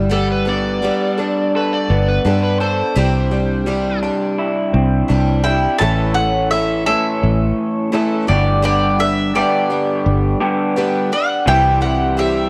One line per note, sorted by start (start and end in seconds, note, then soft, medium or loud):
0.00 0.90 G1 medium
0.00 0.47 G3 medium
0.00 1.55 G4 medium
0.10 0.46 G3 medium
0.10 0.46 B3 medium
0.10 0.46 D4 medium
0.10 0.44 A4 medium
0.10 0.30 A4 medium
0.32 0.48 B4 medium
0.45 0.82 B3 soft
0.45 0.83 D4 medium
0.45 0.82 A4 medium
0.45 1.51 D5 medium
0.82 1.18 G3 medium
0.82 1.19 B3 medium
0.82 1.18 D4 medium
0.82 1.16 A4 medium
1.18 2.24 B3 soft
1.18 2.25 D4 medium
1.18 2.25 A4 medium
1.55 2.60 A4 medium
1.55 1.73 B4 medium
1.73 2.07 D5 medium
1.90 2.18 G1 loud
1.90 2.96 B3 medium
2.08 2.42 B4 medium
2.25 2.81 G2 medium
2.25 2.60 G3 medium
2.25 2.61 B3 medium
2.25 2.60 D4 medium
2.25 2.59 A4 medium
2.44 2.60 B4 medium
2.60 2.95 D4 soft
2.60 2.96 A4 medium
2.60 3.99 C5 medium
2.95 4.09 C2 medium
2.95 3.31 C3 medium
2.95 3.31 E3 medium
2.95 3.32 G3 medium
2.95 3.30 D4 medium
2.95 3.30 G4 medium
3.31 3.66 G3 soft
3.31 3.67 D4 medium
3.31 3.67 G4 medium
3.66 4.02 E3 medium
3.66 4.03 G3 medium
3.66 4.02 D4 medium
3.66 4.01 G4 medium
4.03 5.08 G3 soft
4.03 5.09 D4 soft
4.03 5.09 G4 medium
4.38 5.43 E4 medium
4.73 5.02 C2 loud
4.73 5.80 C4 medium
5.08 5.66 C2 medium
5.08 5.44 E3 medium
5.08 5.45 G3 medium
5.08 5.44 D4 medium
5.08 5.43 G4 medium
5.44 5.81 G3 medium
5.44 5.80 D4 soft
5.44 5.80 E4 medium
5.44 5.80 G4 medium
5.44 5.78 G5 medium
5.78 6.93 A1 medium
5.78 6.16 A2 medium
5.78 6.16 E3 medium
5.78 6.16 A3 medium
5.78 6.16 C#4 medium
5.78 6.11 E4 loud
5.78 6.11 A4 medium
5.78 6.14 A4 medium
5.78 6.11 C#5 loud
5.78 6.14 A5 loud
6.14 6.50 A3 soft
6.14 6.51 C#4 soft
6.14 6.47 E4 medium
6.14 6.51 A4 medium
6.14 6.47 A4 medium
6.14 6.47 C#5 medium
6.14 6.50 F#5 medium
6.50 6.86 E3 medium
6.50 6.87 A3 medium
6.50 6.86 C#4 medium
6.50 7.13 E4 medium
6.50 7.13 A4 medium
6.50 6.85 A4 medium
6.50 7.13 C#5 medium
6.50 6.84 E5 medium
6.86 7.92 A2 medium
6.86 7.91 E3 medium
6.86 7.92 A3 soft
6.86 7.92 C#4 soft
6.86 7.93 A4 medium
6.86 8.24 E5 medium
7.22 7.51 A1 medium
7.22 7.84 E4 medium
7.22 7.84 A4 medium
7.22 7.84 C#5 medium
7.92 8.26 A2 medium
7.92 8.28 E3 medium
7.92 8.28 A3 medium
7.92 8.28 C#4 medium
7.92 8.29 E4 medium
7.92 8.29 A4 medium
7.92 8.27 A4 medium
7.92 8.29 C#5 medium
8.27 9.42 G1 medium
8.27 9.33 G2 medium
8.27 9.33 D3 medium
8.27 8.62 G3 soft
8.27 8.62 B3 soft
8.27 8.63 D4 soft
8.27 8.63 G4 medium
8.27 8.91 G4 medium
8.27 8.91 B4 medium
8.27 8.61 D5 medium
8.27 8.91 D5 medium
8.62 8.99 G2 medium
8.62 8.99 D3 medium
8.62 8.99 G3 medium
8.62 8.99 B3 medium
8.62 8.99 D4 medium
8.62 8.98 G4 medium
8.62 8.97 D5 loud
8.99 9.34 G3 soft
8.99 9.34 B3 soft
8.99 9.34 D4 medium
8.99 9.34 G4 medium
8.99 9.31 G4 medium
8.99 9.31 B4 medium
8.99 9.36 E5 medium
8.99 9.31 E5 medium
9.35 10.39 G2 medium
9.35 10.39 D3 medium
9.35 9.70 G3 medium
9.35 9.71 B3 medium
9.35 9.69 D4 medium
9.35 9.97 G4 medium
9.35 9.69 G4 medium
9.35 9.98 B4 medium
9.35 11.17 D5 medium
9.35 9.98 E5 medium
9.70 10.75 G3 soft
9.70 10.76 B3 soft
9.70 10.77 D4 medium
9.70 10.76 G4 soft
10.05 10.34 G1 medium
10.05 10.67 G4 medium
10.05 10.67 B4 medium
10.05 10.68 D5 medium
10.40 11.10 G2 medium
10.40 11.10 D3 medium
10.40 11.10 G3 medium
10.40 11.10 B3 medium
10.40 11.09 D4 medium
10.40 11.09 G4 medium
10.76 11.12 G3 medium
10.76 11.12 B3 medium
10.76 11.11 D4 medium
10.76 11.38 G4 medium
10.76 11.11 G4 medium
10.76 11.39 B4 medium
10.76 11.39 D5 medium
11.12 11.47 G3 soft
11.12 11.48 B3 soft
11.12 11.47 D4 soft
11.12 11.47 G4 medium
11.12 11.48 F#5 medium
11.47 12.49 C2 medium
11.47 11.83 C3 medium
11.47 11.82 E3 medium
11.47 11.82 G3 medium
11.47 11.82 C4 medium
11.47 12.49 E4 loud
11.47 11.78 G4 medium
11.47 11.80 G4 medium
11.47 11.78 C5 medium
11.47 11.78 E5 loud
11.47 11.80 G5 loud
11.81 12.17 G3 soft
11.81 12.18 C4 soft
11.81 12.17 G4 medium
11.81 12.14 G4 medium
11.81 12.14 C5 medium
11.81 12.14 E5 medium
11.81 12.18 F#5 medium
12.17 12.49 E3 medium
12.17 12.49 G3 medium
12.17 12.49 C4 medium
12.17 12.49 G4 medium
12.17 12.49 C5 medium
12.17 12.49 E5 medium